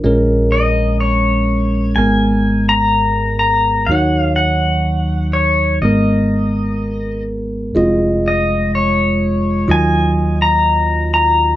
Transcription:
0.04 A#1 A#2 G#3 C#4 A#4
0.52 D#5
1.00 C#5
1.96 G#1 G#2 G#3 B3 A#4 G#5
2.69 A#5
3.39 A#5
3.87 D#2 F#3 F#5
3.91 D#2 D#3 D#4 C#5
4.21 F5
4.36 F#5
5.33 C#5
5.81 G#1 G#2 G#3 B3 A#4 D#5
7.75 F1 F2 G#3 F4 D#5
8.28 D#5
8.75 C#5
9.67 D#2 D#3 F#3 F4 D#5 G#5
10.42 A#5
11.14 A#5

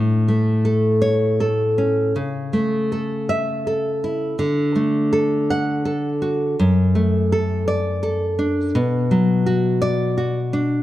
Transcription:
Already playing: A2
0.28 A3
0.65 A4
1.02 C#5
1.40 A4
1.78 C#4
2.16 C#3
2.53 A3
2.92 A4
3.29 E5
3.67 A4
4.04 E4
4.39 D3
4.76 A3
5.13 A4
5.50 F#5
5.85 A4
6.22 F#4
6.59 F#2
6.95 A3
7.32 A4
7.68 D5
8.03 A4
8.39 D4
8.75 B2
9.11 F#3
9.46 F#4
9.82 D5
10.18 F#4
10.53 D4

